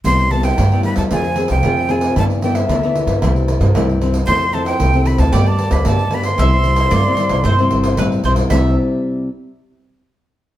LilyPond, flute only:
\new Staff \with { instrumentName = "Flute" } { \time 4/4 \key c \major \tempo 4 = 114 c'''8 a''16 g''8. b''16 a''16 aes''8. g''8. aes''8 | a''8 g''16 e''4. r4. r16 | c'''8 a''16 g''8. b''16 a''16 g''16 a''8 b''16 a''8 b''16 c'''16~ | c'''2. r4 |
r1 | }